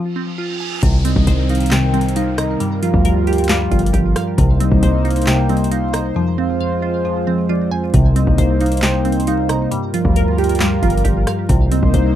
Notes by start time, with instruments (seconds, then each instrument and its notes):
Already playing: synth pluck F3 C4 F4 F5, reverse cymbal
0.16 synth pluck C4
0.38 synth pluck F4
0.60 synth pluck G#5
0.83 808-style bass C2, synth keys C3, synth pluck C3, analog synth pad D#3 C4 A#4, kick, closed hi-hat, downlifter
1.05 synth keys G3, synth pluck C4, soft synth lead D#5, closed hi-hat
1.16 808-style bass C2, kick
1.27 808-style bass C2, synth keys C3, synth pluck C5, closed hi-hat
1.49 synth pluck D#4, soft synth lead F5, closed hi-hat
1.55 closed hi-hat
1.60 closed hi-hat
1.66 closed hi-hat
1.71 synth keys C3, synth pluck C3, soft synth lead G5, snare, clap, closed hi-hat
1.94 synth keys G3, synth pluck C4, closed hi-hat
2.01 closed hi-hat
2.09 closed hi-hat
2.16 synth keys G3, synth pluck D#4, soft synth lead F5, closed hi-hat
2.38 synth keys C3, soft synth lead D#5, synth pluck A#5, cross-stick, closed hi-hat
2.60 synth keys G2, synth pluck G3, analog synth pad G3 F4, closed hi-hat
2.83 synth keys F3, synth pluck F4, soft synth lead F5, closed hi-hat
2.94 808-style bass D2, kick
3.05 synth keys G2, synth pluck A#4, closed hi-hat
3.27 synth pluck G4, soft synth lead G5, closed hi-hat
3.33 closed hi-hat
3.38 closed hi-hat
3.44 closed hi-hat
3.49 synth keys G2, synth pluck G3, soft synth lead F5, snare, clap, closed hi-hat
3.71 808-style bass G1, synth keys F3, synth pluck F4, kick, closed hi-hat
3.79 closed hi-hat
3.86 closed hi-hat
3.93 808-style bass G1, synth keys F3, synth pluck G4, kick, closed hi-hat
4.16 synth keys G2, synth pluck F5, cross-stick, closed hi-hat
4.38 808-style bass C2, synth pluck C3, synth keys C3, analog synth pad A#3 D#4 C5, kick, closed hi-hat
4.60 synth keys G3, synth pluck C4, soft synth lead D#5, closed hi-hat
4.72 808-style bass C2, kick
4.83 808-style bass C2, synth keys C3, synth pluck C5, closed hi-hat
5.05 synth pluck D#4, soft synth lead F5, closed hi-hat
5.10 closed hi-hat
5.16 closed hi-hat
5.22 closed hi-hat
5.27 synth keys C3, synth pluck C3, soft synth lead G5, snare, clap, closed hi-hat
5.49 synth keys G3, synth pluck C4, closed hi-hat
5.57 closed hi-hat
5.64 closed hi-hat
5.71 synth keys G3, synth pluck D#4, soft synth lead F5, closed hi-hat
5.93 synth keys C3, soft synth lead D#5, synth pluck A#5, cross-stick, closed hi-hat
6.16 synth keys F2, synth pluck F3, analog synth pad G#3 F4
6.38 synth keys F3, synth pluck C4, soft synth lead F5
6.60 synth keys F2, synth pluck F5
6.82 synth pluck F4, soft synth lead C5
7.05 synth keys F2, synth pluck F3
7.27 synth keys F3, synth pluck C4
7.49 synth keys F3, synth pluck F4, soft synth lead D5
7.71 synth keys F2, soft synth lead C5, synth pluck G#5
7.94 808-style bass C2, synth keys C3, synth pluck C3, analog synth pad A#3 D#4 C5, kick, closed hi-hat
8.16 synth keys G3, synth pluck C4, soft synth lead D#5, closed hi-hat
8.27 808-style bass C2, kick
8.38 808-style bass C2, synth keys C3, synth pluck C5, closed hi-hat
8.61 synth pluck D#4, soft synth lead F5, closed hi-hat
8.66 closed hi-hat
8.72 closed hi-hat
8.77 closed hi-hat
8.82 synth keys C3, synth pluck C3, soft synth lead G5, snare, clap, closed hi-hat
9.05 synth keys G3, synth pluck C4, closed hi-hat
9.12 closed hi-hat
9.20 closed hi-hat
9.27 synth keys G3, synth pluck D#4, soft synth lead F5, closed hi-hat
9.49 synth keys C3, soft synth lead D#5, synth pluck A#5, cross-stick, closed hi-hat
9.71 synth keys G2, synth pluck G3, analog synth pad G3 F4 A#4, closed hi-hat
9.94 synth keys F3, synth pluck F4, soft synth lead F5, closed hi-hat
10.05 808-style bass D2, kick
10.16 synth keys G2, synth pluck A#4, closed hi-hat
10.38 synth pluck G4, soft synth lead G5, closed hi-hat
10.44 closed hi-hat
10.49 closed hi-hat
10.55 closed hi-hat
10.60 synth keys G2, synth pluck G3, soft synth lead F5, snare, clap, closed hi-hat
10.83 808-style bass G1, synth keys F3, synth pluck F4, kick, closed hi-hat
10.90 closed hi-hat
10.97 closed hi-hat
11.04 808-style bass G1, synth keys F3, synth pluck G4, kick, closed hi-hat
11.27 synth keys G2, synth pluck F5, cross-stick, closed hi-hat
11.49 808-style bass C2, synth pluck C3, synth keys C3, analog synth pad A#3 D#4 C5, kick, closed hi-hat
11.72 synth keys G3, synth pluck C4, soft synth lead D#5, closed hi-hat
11.83 808-style bass C2, kick
11.94 808-style bass C2, synth keys C3, synth pluck C5, closed hi-hat